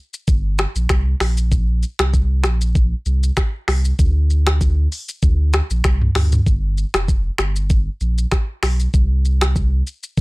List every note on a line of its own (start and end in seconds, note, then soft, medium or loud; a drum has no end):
0.14 shaker medium
0.28 0.67 G1 loud
0.28 kick loud
0.28 shaker medium
0.58 finger snap medium
0.58 cross-stick loud
0.58 shaker soft
0.76 0.87 A#1 medium
0.76 shaker medium
0.89 1.15 C2 loud
0.89 finger snap medium
0.89 kick medium
0.89 cross-stick medium
0.89 shaker medium
1.20 1.84 A#1 loud
1.20 finger snap medium
1.20 cross-stick medium
1.20 open hi-hat medium
1.20 shaker medium
1.37 shaker medium
1.52 kick loud
1.52 shaker medium
1.83 shaker soft
1.99 2.46 C2 medium
1.99 finger snap medium
1.99 cross-stick loud
1.99 shaker medium
2.14 kick medium
2.14 shaker medium
2.44 2.94 A#1 medium
2.44 finger snap medium
2.44 cross-stick medium
2.44 shaker medium
2.61 shaker medium
2.75 kick loud
2.75 shaker medium
3.06 3.31 C2 loud
3.06 shaker soft
3.23 shaker medium
3.37 finger snap medium
3.37 kick medium
3.37 cross-stick medium
3.37 shaker medium
3.68 3.93 C2 medium
3.68 finger snap medium
3.68 cross-stick medium
3.68 open hi-hat medium
3.68 shaker medium
3.85 shaker medium
3.99 4.88 D2 loud
3.99 kick loud
3.99 shaker medium
4.30 shaker medium
4.47 finger snap medium
4.47 cross-stick loud
4.47 shaker medium
4.61 kick medium
4.61 shaker medium
4.92 open hi-hat medium
4.92 shaker soft
5.09 shaker medium
5.22 5.61 D2 medium
5.22 kick loud
5.22 shaker medium
5.53 finger snap medium
5.53 cross-stick loud
5.53 shaker soft
5.70 5.82 A#1 medium
5.70 shaker medium
5.84 6.10 C2 loud
5.84 finger snap medium
5.84 kick medium
5.84 cross-stick medium
5.84 shaker medium
6.01 mid tom medium
6.15 6.40 D2 medium
6.15 finger snap medium
6.15 cross-stick medium
6.15 mid tom medium
6.15 open hi-hat medium
6.15 shaker medium
6.32 mid tom loud
6.32 shaker medium
6.46 6.85 G1 loud
6.46 kick loud
6.46 shaker medium
6.78 shaker soft
6.94 7.31 F1 medium
6.94 finger snap medium
6.94 cross-stick loud
6.94 shaker medium
7.08 kick medium
7.08 shaker medium
7.38 7.89 G1 medium
7.38 finger snap medium
7.38 cross-stick medium
7.38 shaker medium
7.56 shaker medium
7.70 kick loud
7.70 shaker medium
8.01 8.26 A#1 medium
8.01 shaker medium
8.18 shaker medium
8.32 finger snap medium
8.32 kick medium
8.32 cross-stick medium
8.32 shaker medium
8.63 8.88 B1 medium
8.63 finger snap medium
8.63 cross-stick medium
8.63 open hi-hat medium
8.63 shaker medium
8.80 shaker medium
8.94 9.83 C2 loud
8.94 kick loud
8.94 shaker medium
9.25 shaker medium
9.41 finger snap medium
9.41 cross-stick loud
9.41 shaker medium
9.56 kick medium
9.56 shaker medium
9.87 shaker medium
10.03 shaker medium
10.17 10.21 G1 loud
10.17 kick loud
10.17 shaker medium